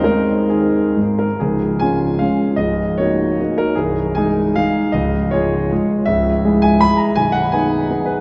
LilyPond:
<<
  \new Staff \with { instrumentName = "Grand piano" } { \time 3/4 \key aes \major \tempo 4 = 156 bes'4 aes'4. bes'8 | \key des \major aes'4 aes''4 f''4 | ees''4 des''4. bes'8 | aes'4 aes''4 f''4 |
ees''4 des''4. r8 | \key gis \minor e''4. gis''8 b''8 ais''8 | gis''8 fis''8 gis''4. b'8 | }
  \new Staff \with { instrumentName = "Grand piano" } { \time 3/4 \key aes \major <aes c' ees'>4 ees4 aes,4 | \key des \major <des,, des,>4 <aes des' f'>4 <aes des' f'>4 | <des,, des,>4 <bes ees' ges'>4 <bes ees' ges'>4 | <c,, c,>4 <aes ees' aes'>4 <aes ees' aes'>4 |
<des,, des,>4 <aes f' aes'>4 <aes f' aes'>4 | \key gis \minor <cis,, cis,>4 <gis e' gis'>4 <gis e' gis'>4 | <b,,, b,,>4 <b dis' gis'>4 <b dis' gis'>4 | }
>>